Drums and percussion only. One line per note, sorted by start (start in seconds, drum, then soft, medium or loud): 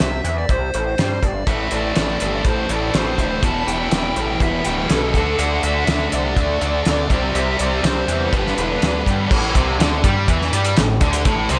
0.00 snare medium
0.25 closed hi-hat soft
0.49 kick medium
0.49 closed hi-hat medium
0.74 closed hi-hat soft
0.98 snare medium
0.98 closed hi-hat medium
1.23 kick medium
1.23 closed hi-hat soft
1.47 kick loud
1.47 closed hi-hat medium
1.71 closed hi-hat soft
1.95 snare loud
1.95 closed hi-hat medium
2.20 closed hi-hat medium
2.45 kick medium
2.45 closed hi-hat medium
2.69 closed hi-hat medium
2.94 snare loud
2.94 closed hi-hat medium
3.18 kick medium
3.18 closed hi-hat soft
3.43 kick loud
3.43 closed hi-hat medium
3.68 closed hi-hat soft
3.91 snare loud
3.91 closed hi-hat medium
4.16 closed hi-hat medium
4.40 kick medium
4.40 closed hi-hat medium
4.65 closed hi-hat soft
4.90 snare medium
4.90 closed hi-hat medium
5.14 kick medium
5.14 closed hi-hat soft
5.39 closed hi-hat medium
5.63 closed hi-hat soft
5.87 snare medium
5.87 closed hi-hat medium
6.12 closed hi-hat medium
6.37 kick medium
6.37 closed hi-hat medium
6.61 closed hi-hat medium
6.85 snare medium
6.85 closed hi-hat medium
7.10 kick medium
7.10 closed hi-hat medium
7.35 closed hi-hat medium
7.59 closed hi-hat medium
7.84 snare loud
7.84 closed hi-hat medium
8.08 closed hi-hat soft
8.33 kick medium
8.33 closed hi-hat medium
8.47 snare soft
8.58 closed hi-hat soft
8.82 snare loud
8.82 closed hi-hat medium
9.06 kick medium
9.06 closed hi-hat soft
9.31 kick loud
9.31 crash loud
9.55 kick medium
9.55 closed hi-hat medium
9.80 snare loud
9.80 closed hi-hat medium
10.04 kick loud
10.04 closed hi-hat medium
10.28 kick medium
10.28 closed hi-hat medium
10.42 snare soft
10.53 closed hi-hat medium
10.65 closed hi-hat medium
10.77 snare loud
10.77 closed hi-hat medium
11.01 kick loud
11.01 closed hi-hat medium
11.13 closed hi-hat medium
11.25 kick loud
11.25 closed hi-hat medium
11.49 closed hi-hat medium